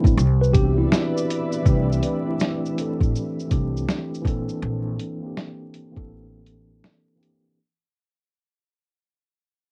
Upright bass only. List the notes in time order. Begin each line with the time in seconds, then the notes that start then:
0.05 A1
0.17 C2
1.66 C2
3.01 A1
3.51 C2
4.25 A#1
4.62 A#1
5.97 A1